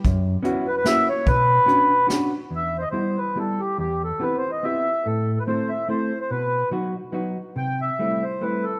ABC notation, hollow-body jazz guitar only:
X:1
M:3/4
L:1/8
Q:1/4=143
K:Bm
V:1 name="Hollow-body jazz guitar"
F,,2 [B,CEF] z [^A,CEF] z | B,,2 [B,CDF] z [B,CDF] z | [K:Em] E,,2 [G,B,EG] z [G,B,EG] z | E,,2 [B,CEG] z [B,CEG] z |
A,,2 [A,CEA] z [A,CEA] z | B,,2 [F,B,^DF] z [F,B,DF] z | C,2 [G,A,CE] z [G,A,CE] z |]